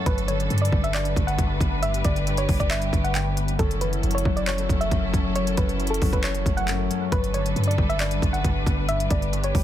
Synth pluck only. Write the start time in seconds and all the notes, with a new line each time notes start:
0.06 B4
0.28 C#5
0.62 D5
0.84 E5
0.94 D5
1.27 F#5
1.82 E5
2.05 D5
2.38 C#5
2.60 D5
2.70 E5
3.04 F#5
3.15 G5
3.59 A4
3.81 B4
4.15 C#5
4.36 D5
4.47 C#5
4.81 E5
5.36 C#5
5.57 B4
5.90 A4
6.13 B4
6.24 C#5
6.57 F#5
7.12 B4
7.34 C#5
7.67 D5
7.89 E5
8.00 D5
8.33 F#5
8.89 E5
9.11 D5
9.44 C#5